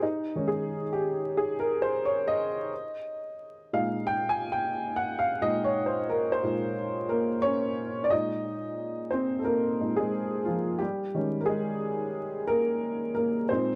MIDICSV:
0, 0, Header, 1, 2, 480
1, 0, Start_track
1, 0, Tempo, 674157
1, 8, Time_signature, 4, 2, 24, 8
1, 9793, End_track
2, 0, Start_track
2, 0, Title_t, "Upright piano"
2, 0, Program_c, 0, 0
2, 0, Control_c, 0, 64, 127
2, 18, Control_c, 0, 64, 0
2, 18, Note_on_c, 0, 63, 83
2, 153, Control_c, 0, 64, 127
2, 253, Note_on_c, 0, 51, 55
2, 258, Note_on_c, 0, 56, 49
2, 260, Note_on_c, 0, 61, 59
2, 339, Note_on_c, 0, 68, 78
2, 342, Note_off_c, 0, 63, 0
2, 579, Note_off_c, 0, 51, 0
2, 582, Note_off_c, 0, 56, 0
2, 583, Note_off_c, 0, 61, 0
2, 660, Note_on_c, 0, 67, 85
2, 663, Note_off_c, 0, 68, 0
2, 978, Note_on_c, 0, 68, 92
2, 983, Note_off_c, 0, 67, 0
2, 1136, Note_on_c, 0, 70, 90
2, 1138, Note_off_c, 0, 68, 0
2, 1295, Note_on_c, 0, 72, 89
2, 1297, Note_off_c, 0, 70, 0
2, 1456, Note_off_c, 0, 72, 0
2, 1462, Note_on_c, 0, 73, 93
2, 1604, Note_off_c, 0, 73, 0
2, 1620, Note_on_c, 0, 75, 97
2, 1937, Control_c, 0, 64, 0
2, 2066, Note_off_c, 0, 75, 0
2, 2079, Control_c, 0, 64, 127
2, 2655, Note_on_c, 0, 46, 49
2, 2658, Note_on_c, 0, 56, 51
2, 2660, Note_on_c, 0, 77, 84
2, 2663, Note_on_c, 0, 63, 57
2, 2896, Note_on_c, 0, 79, 101
2, 2901, Note_off_c, 0, 77, 0
2, 3056, Note_on_c, 0, 80, 97
2, 3057, Note_off_c, 0, 79, 0
2, 3201, Note_off_c, 0, 80, 0
2, 3219, Note_on_c, 0, 79, 93
2, 3343, Note_off_c, 0, 46, 0
2, 3344, Note_off_c, 0, 56, 0
2, 3347, Note_off_c, 0, 63, 0
2, 3534, Note_on_c, 0, 78, 91
2, 3543, Note_off_c, 0, 79, 0
2, 3694, Note_on_c, 0, 77, 91
2, 3696, Note_off_c, 0, 78, 0
2, 3840, Note_off_c, 0, 77, 0
2, 3851, Note_on_c, 0, 46, 59
2, 3857, Note_on_c, 0, 56, 54
2, 3859, Note_on_c, 0, 75, 102
2, 3862, Note_on_c, 0, 63, 62
2, 4018, Note_off_c, 0, 75, 0
2, 4018, Note_on_c, 0, 73, 89
2, 4054, Note_off_c, 0, 73, 0
2, 4174, Note_on_c, 0, 72, 77
2, 4320, Note_off_c, 0, 72, 0
2, 4340, Note_on_c, 0, 70, 86
2, 4483, Note_off_c, 0, 70, 0
2, 4501, Note_on_c, 0, 72, 93
2, 4565, Note_off_c, 0, 46, 0
2, 4569, Note_off_c, 0, 56, 0
2, 4570, Note_off_c, 0, 63, 0
2, 4575, Note_on_c, 0, 46, 52
2, 4580, Note_on_c, 0, 56, 43
2, 4581, Note_on_c, 0, 63, 52
2, 4788, Note_off_c, 0, 46, 0
2, 4791, Note_off_c, 0, 56, 0
2, 4791, Note_off_c, 0, 63, 0
2, 5049, Note_on_c, 0, 70, 87
2, 5063, Note_on_c, 0, 58, 72
2, 5186, Note_off_c, 0, 72, 0
2, 5272, Note_off_c, 0, 70, 0
2, 5279, Note_off_c, 0, 58, 0
2, 5282, Note_on_c, 0, 73, 110
2, 5300, Note_on_c, 0, 61, 81
2, 5701, Note_off_c, 0, 61, 0
2, 5725, Note_on_c, 0, 74, 85
2, 5734, Note_off_c, 0, 73, 0
2, 5769, Note_off_c, 0, 74, 0
2, 5770, Note_on_c, 0, 75, 99
2, 5776, Control_c, 0, 64, 0
2, 5779, Note_on_c, 0, 46, 52
2, 5784, Note_on_c, 0, 56, 49
2, 5789, Note_on_c, 0, 63, 77
2, 5899, Control_c, 0, 64, 127
2, 6465, Note_off_c, 0, 46, 0
2, 6468, Note_off_c, 0, 56, 0
2, 6471, Note_off_c, 0, 63, 0
2, 6483, Note_on_c, 0, 72, 80
2, 6504, Note_on_c, 0, 60, 72
2, 6511, Note_off_c, 0, 75, 0
2, 6679, Note_off_c, 0, 60, 0
2, 6685, Note_on_c, 0, 69, 61
2, 6687, Note_off_c, 0, 72, 0
2, 6724, Note_on_c, 0, 70, 83
2, 6729, Note_off_c, 0, 69, 0
2, 6746, Note_on_c, 0, 58, 71
2, 6980, Note_on_c, 0, 46, 43
2, 6984, Note_on_c, 0, 56, 39
2, 6985, Note_on_c, 0, 63, 50
2, 7084, Note_off_c, 0, 58, 0
2, 7095, Note_on_c, 0, 68, 84
2, 7110, Note_off_c, 0, 56, 0
2, 7110, Note_off_c, 0, 70, 0
2, 7120, Note_on_c, 0, 56, 64
2, 7191, Note_off_c, 0, 46, 0
2, 7193, Note_off_c, 0, 63, 0
2, 7434, Note_off_c, 0, 56, 0
2, 7441, Note_on_c, 0, 65, 73
2, 7455, Note_off_c, 0, 68, 0
2, 7463, Note_on_c, 0, 53, 59
2, 7679, Note_off_c, 0, 53, 0
2, 7679, Note_on_c, 0, 67, 90
2, 7692, Note_off_c, 0, 65, 0
2, 7696, Control_c, 0, 64, 0
2, 7703, Note_on_c, 0, 55, 69
2, 7843, Control_c, 0, 64, 127
2, 7936, Note_on_c, 0, 51, 55
2, 7938, Note_on_c, 0, 56, 49
2, 7941, Note_on_c, 0, 61, 58
2, 8090, Note_off_c, 0, 67, 0
2, 8103, Note_off_c, 0, 55, 0
2, 8121, Note_on_c, 0, 70, 61
2, 8157, Note_on_c, 0, 68, 88
2, 8167, Note_off_c, 0, 70, 0
2, 8171, Note_off_c, 0, 56, 0
2, 8182, Note_on_c, 0, 56, 72
2, 8854, Note_off_c, 0, 68, 0
2, 8867, Note_off_c, 0, 56, 0
2, 8882, Note_on_c, 0, 70, 100
2, 8906, Note_on_c, 0, 58, 66
2, 9349, Note_off_c, 0, 58, 0
2, 9349, Note_off_c, 0, 70, 0
2, 9360, Note_on_c, 0, 70, 81
2, 9387, Note_on_c, 0, 58, 66
2, 9583, Note_off_c, 0, 51, 0
2, 9586, Note_off_c, 0, 61, 0
2, 9601, Note_off_c, 0, 58, 0
2, 9604, Note_on_c, 0, 72, 88
2, 9611, Note_off_c, 0, 70, 0
2, 9616, Control_c, 0, 64, 0
2, 9619, Note_on_c, 0, 46, 57
2, 9621, Note_on_c, 0, 56, 47
2, 9626, Note_on_c, 0, 63, 63
2, 9627, Note_on_c, 0, 60, 70
2, 9755, Control_c, 0, 64, 127
2, 9793, Note_off_c, 0, 46, 0
2, 9793, Note_off_c, 0, 56, 0
2, 9793, Note_off_c, 0, 60, 0
2, 9793, Note_off_c, 0, 63, 0
2, 9793, Note_off_c, 0, 72, 0
2, 9793, End_track
0, 0, End_of_file